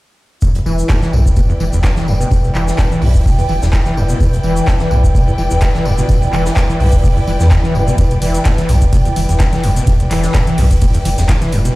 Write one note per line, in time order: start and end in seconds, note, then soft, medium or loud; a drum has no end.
0.42 0.49 E2 medium
0.42 11.76 E4 medium
0.42 11.76 G5 medium
0.42 kick loud
0.42 tambourine medium
0.42 shaker medium
0.55 0.61 E1 medium
0.55 closed hi-hat soft
0.55 shaker soft
0.66 0.83 E1 medium
0.66 0.91 E3 medium
0.66 tambourine medium
0.71 11.76 B4 medium
0.79 shaker medium
0.89 0.97 G2 medium
0.89 kick loud
0.89 snare loud
0.89 clap loud
0.89 tambourine medium
0.89 shaker medium
0.95 11.76 G5 medium
1.02 1.15 E3 loud
1.02 snare soft
1.02 shaker soft
1.08 11.76 D5 medium
1.13 1.30 B1 medium
1.13 1.20 E2 medium
1.13 tambourine medium
1.26 kick medium
1.26 shaker medium
1.36 1.41 B2 medium
1.36 kick loud
1.36 tambourine medium
1.36 shaker medium
1.50 1.53 E2 medium
1.50 shaker soft
1.60 1.69 E1 medium
1.60 1.65 E3 medium
1.60 tambourine medium
1.73 1.89 E1 medium
1.73 1.79 E2 medium
1.73 shaker medium
1.84 1.88 E3 medium
1.84 kick loud
1.84 snare loud
1.84 clap loud
1.84 tambourine medium
1.84 shaker medium
1.97 2.09 E3 loud
1.97 snare medium
1.97 shaker soft
2.08 2.25 E1 loud
2.08 2.15 E2 medium
2.08 tambourine medium
2.20 2.29 B2 medium
2.20 shaker medium
2.31 2.38 E2 medium
2.31 kick loud
2.31 tambourine medium
2.31 shaker medium
2.44 2.50 E1 medium
2.44 shaker soft
2.55 2.72 E1 medium
2.55 2.80 E3 medium
2.55 clap medium
2.55 tambourine medium
2.68 snare soft
2.68 shaker medium
2.78 2.86 G2 medium
2.78 kick loud
2.78 snare loud
2.78 clap loud
2.78 tambourine medium
2.78 shaker medium
2.91 3.04 E3 loud
2.91 shaker soft
3.02 3.19 B1 medium
3.02 3.09 E2 medium
3.02 open hi-hat medium
3.15 kick medium
3.15 shaker medium
3.26 3.30 B2 medium
3.26 kick loud
3.26 tambourine medium
3.26 shaker medium
3.38 3.42 E2 medium
3.38 shaker soft
3.49 3.58 E1 medium
3.49 3.54 E3 medium
3.49 tambourine medium
3.62 3.78 E1 medium
3.62 3.68 E2 medium
3.62 snare medium
3.62 shaker medium
3.73 3.77 E3 medium
3.73 kick loud
3.73 snare loud
3.73 clap loud
3.73 tambourine medium
3.73 shaker medium
3.86 3.98 E3 loud
3.86 snare soft
3.86 shaker soft
3.97 4.14 E1 medium
3.97 4.04 E2 medium
3.97 tambourine medium
4.09 4.18 B2 medium
4.09 shaker medium
4.20 4.27 E2 medium
4.20 kick loud
4.20 tambourine medium
4.20 shaker medium
4.33 4.39 E1 medium
4.33 closed hi-hat soft
4.33 shaker soft
4.43 4.61 E1 loud
4.43 4.69 E3 medium
4.43 tambourine medium
4.56 shaker medium
4.67 4.75 G2 medium
4.67 kick loud
4.67 snare loud
4.67 clap loud
4.67 tambourine medium
4.67 shaker medium
4.80 4.93 E3 loud
4.80 snare soft
4.80 shaker soft
4.91 5.08 B1 medium
4.91 4.98 E2 medium
4.91 tambourine medium
5.04 kick medium
5.04 shaker medium
5.15 5.19 B2 medium
5.15 kick loud
5.15 tambourine medium
5.15 shaker medium
5.28 5.31 E2 medium
5.28 shaker soft
5.38 5.47 E1 medium
5.38 5.43 E3 medium
5.38 tambourine medium
5.50 5.67 E1 loud
5.50 5.57 E2 medium
5.50 shaker medium
5.61 5.66 E3 medium
5.61 kick loud
5.61 snare loud
5.61 clap loud
5.61 tambourine medium
5.61 shaker medium
5.75 5.87 E3 loud
5.75 snare medium
5.75 shaker soft
5.85 6.03 E1 loud
5.85 5.93 E2 medium
5.85 tambourine medium
5.98 6.07 B2 medium
5.98 shaker medium
6.09 6.16 E2 medium
6.09 kick loud
6.09 tambourine medium
6.09 shaker medium
6.22 6.28 E1 medium
6.22 shaker soft
6.33 6.50 E1 loud
6.33 6.58 E3 medium
6.33 clap medium
6.33 tambourine medium
6.46 snare soft
6.46 shaker medium
6.57 6.64 G2 medium
6.57 kick loud
6.57 snare loud
6.57 clap loud
6.57 tambourine medium
6.57 shaker medium
6.69 6.82 E3 loud
6.69 shaker soft
6.80 6.97 B1 medium
6.80 6.87 E2 medium
6.80 open hi-hat medium
6.92 kick medium
6.92 shaker medium
7.04 7.08 B2 medium
7.04 kick loud
7.04 tambourine medium
7.04 shaker medium
7.17 7.20 E2 medium
7.17 shaker soft
7.27 7.36 E1 medium
7.27 7.32 E3 medium
7.27 tambourine medium
7.40 7.46 E2 medium
7.40 7.56 E2 medium
7.40 snare soft
7.40 shaker medium
7.51 7.55 E3 medium
7.51 kick loud
7.51 snare loud
7.51 clap loud
7.51 tambourine medium
7.51 shaker medium
7.64 7.76 E3 loud
7.64 snare soft
7.64 shaker soft
7.75 7.92 E1 medium
7.75 7.82 E2 medium
7.75 tambourine medium
7.87 7.96 B2 medium
7.87 shaker medium
7.98 8.05 E2 medium
7.98 kick loud
7.98 closed hi-hat medium
7.98 tambourine medium
7.98 shaker medium
8.11 8.17 E1 medium
8.11 closed hi-hat soft
8.11 shaker soft
8.22 8.39 E1 medium
8.22 8.47 E3 medium
8.22 open hi-hat loud
8.22 tambourine medium
8.35 closed hi-hat soft
8.35 shaker medium
8.45 8.53 G2 medium
8.45 kick loud
8.45 snare loud
8.45 clap loud
8.45 closed hi-hat medium
8.45 tambourine medium
8.45 shaker medium
8.58 8.71 E3 loud
8.58 snare soft
8.58 closed hi-hat soft
8.58 shaker soft
8.69 8.86 B1 medium
8.69 8.76 E2 medium
8.69 open hi-hat medium
8.69 tambourine medium
8.82 kick medium
8.82 closed hi-hat soft
8.82 shaker medium
8.93 8.97 B2 medium
8.93 kick loud
8.93 closed hi-hat medium
8.93 tambourine medium
8.93 shaker medium
9.05 9.09 E2 medium
9.05 closed hi-hat soft
9.05 shaker soft
9.16 9.25 E1 medium
9.16 9.21 E3 medium
9.16 open hi-hat loud
9.16 tambourine medium
9.29 9.45 E1 medium
9.29 9.35 E2 medium
9.29 closed hi-hat soft
9.29 shaker medium
9.40 9.44 E3 medium
9.40 kick loud
9.40 snare loud
9.40 clap loud
9.40 closed hi-hat medium
9.40 tambourine medium
9.40 shaker medium
9.53 9.65 E3 loud
9.53 snare medium
9.53 closed hi-hat soft
9.53 shaker soft
9.64 9.81 E1 loud
9.64 9.71 E2 medium
9.64 open hi-hat medium
9.64 tambourine medium
9.76 9.85 B2 medium
9.76 closed hi-hat soft
9.76 shaker medium
9.87 9.94 E2 medium
9.87 kick loud
9.87 closed hi-hat medium
9.87 tambourine medium
9.87 shaker medium
10.00 10.06 E1 medium
10.00 closed hi-hat soft
10.00 shaker soft
10.11 10.28 E1 loud
10.11 10.36 E3 medium
10.11 clap medium
10.11 open hi-hat loud
10.11 tambourine medium
10.23 snare soft
10.23 closed hi-hat soft
10.23 shaker medium
10.34 10.41 G2 medium
10.34 kick loud
10.34 snare loud
10.34 clap loud
10.34 closed hi-hat medium
10.34 tambourine medium
10.34 shaker medium
10.47 10.60 E3 loud
10.47 closed hi-hat soft
10.47 shaker soft
10.58 10.75 B1 medium
10.58 10.65 E2 medium
10.58 open hi-hat medium
10.71 kick medium
10.71 closed hi-hat soft
10.71 shaker medium
10.81 10.86 B2 medium
10.81 kick loud
10.81 closed hi-hat medium
10.81 tambourine medium
10.81 shaker medium
10.94 10.98 E2 medium
10.94 closed hi-hat soft
10.94 shaker soft
11.05 11.14 E1 medium
11.05 11.09 E3 medium
11.05 open hi-hat loud
11.05 tambourine medium
11.18 11.34 E1 medium
11.18 11.24 E2 medium
11.18 snare medium
11.18 closed hi-hat soft
11.18 shaker medium
11.29 11.33 E3 medium
11.29 kick loud
11.29 snare loud
11.29 clap loud
11.29 closed hi-hat medium
11.29 tambourine medium
11.29 shaker medium
11.41 11.54 E3 loud
11.41 snare soft
11.41 closed hi-hat soft
11.41 shaker soft
11.52 11.70 E1 loud
11.52 11.59 E2 medium
11.52 open hi-hat medium
11.52 tambourine medium
11.65 11.74 B2 medium
11.65 closed hi-hat soft
11.65 shaker medium